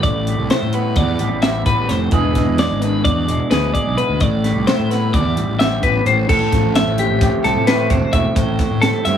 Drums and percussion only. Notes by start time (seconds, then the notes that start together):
0.03 kick, closed hi-hat
0.27 closed hi-hat
0.50 snare, closed hi-hat
0.73 closed hi-hat
0.96 kick, closed hi-hat
1.19 closed hi-hat
1.42 snare, closed hi-hat
1.66 kick, closed hi-hat
1.89 snare, closed hi-hat
2.11 kick, closed hi-hat
2.35 kick, snare, closed hi-hat
2.58 snare, closed hi-hat
2.82 closed hi-hat
3.05 kick, closed hi-hat
3.28 closed hi-hat
3.51 snare, closed hi-hat
3.75 kick, closed hi-hat
3.98 closed hi-hat
4.20 kick, closed hi-hat
4.44 snare, closed hi-hat
4.67 snare, closed hi-hat
4.91 snare, closed hi-hat
5.14 kick, closed hi-hat
5.37 closed hi-hat
5.60 snare, closed hi-hat
5.83 kick, closed hi-hat
6.06 closed hi-hat
6.29 kick, crash
6.52 kick, snare, closed hi-hat
6.75 snare, closed hi-hat
6.98 closed hi-hat
7.21 kick, snare, closed hi-hat
7.44 snare, closed hi-hat
7.67 snare, closed hi-hat
7.90 kick, closed hi-hat
8.13 kick, closed hi-hat
8.36 kick, closed hi-hat
8.59 kick, snare, closed hi-hat
8.82 snare, closed hi-hat
9.05 snare, closed hi-hat